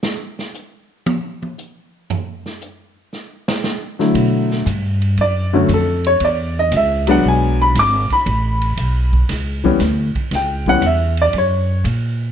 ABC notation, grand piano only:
X:1
M:4/4
L:1/8
Q:"Swing" 1/4=117
K:Bm
V:1 name="Grand piano"
z8 | z8 | z4 d F A c | d ^d e f ^g b =d' b- |
b4 z4 | g f e d c2 z2 |]
V:2 name="Grand piano" clef=bass
z8 | z6 z [D,F,A,E]- | [D,F,A,E]2 z3 [D,F,A,C] z2 | z3 [F,^G,B,D]3 z2 |
z4 z [E,G,B,C] z2 | z [E,G,B,C] z6 |]